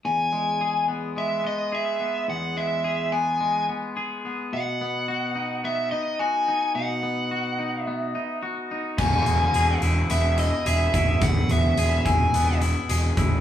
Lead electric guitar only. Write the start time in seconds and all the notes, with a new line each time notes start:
0.05 G#5
1.18 E5
1.46 D#5
1.75 E5
2.30 F#5
2.57 E5
3.12 G#5
4.53 F#5
5.65 E5
5.91 D#5
6.19 G#5
6.75 F#5
7.83 E5
8.99 G#5
10.11 E5
10.39 D#5
10.67 E5
11.23 F#5
11.51 E5
12.05 G#5